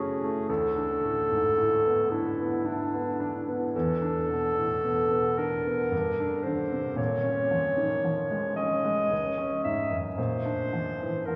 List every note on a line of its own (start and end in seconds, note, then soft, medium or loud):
0.00 0.44 F#2 soft
0.00 0.51 B2 soft
0.00 0.50 C#3 soft
0.00 0.23 A3 soft
0.00 0.51 C#4 soft
0.00 0.50 E4 soft
0.00 0.49 G#4 medium
0.23 0.49 A3 soft
0.49 3.71 D2 soft
0.49 2.12 A4 medium
0.76 1.18 D4 soft
1.04 1.46 A2 soft
1.31 1.57 G#2 soft
1.58 2.00 A2 soft
1.86 2.28 B3 soft
2.10 2.55 D4 soft
2.10 2.67 E4 medium
2.40 2.83 B3 soft
2.65 3.47 D4 medium
2.65 3.09 E4 soft
2.94 3.37 B3 soft
3.20 3.63 D4 soft
3.48 3.74 B3 soft
3.75 5.89 E2 soft
3.75 5.39 A4 medium
4.02 4.46 D4 soft
4.29 4.73 B2 soft
4.57 4.84 A2 soft
4.84 5.27 B2 soft
5.11 5.54 B3 soft
5.37 5.81 D4 soft
5.37 6.45 A#4 medium
5.66 5.93 B3 soft
5.92 6.95 G2 soft
6.20 6.62 D4 soft
6.43 6.88 D3 soft
6.43 6.97 C5 medium
6.72 6.98 C3 soft
6.96 9.06 A#2 soft
6.96 8.54 C#5 medium
7.23 7.66 C#4 soft
7.51 7.94 F3 soft
7.77 8.04 D#3 soft
8.05 8.47 F3 soft
8.31 8.74 G#3 soft
8.56 9.00 C#4 soft
8.56 9.61 D#5 medium
8.85 9.11 G#3 soft
9.10 10.14 C#2 soft
9.38 9.80 C#4 soft
9.64 10.07 G#2 soft
9.64 9.98 E5 soft
9.91 10.18 F#2 soft
10.16 11.36 A#2 soft
10.16 11.27 C5 medium
10.45 10.89 D4 soft
10.73 11.16 F3 soft
11.01 11.28 E3 soft
11.26 11.36 F3 soft
11.26 11.36 A#4 soft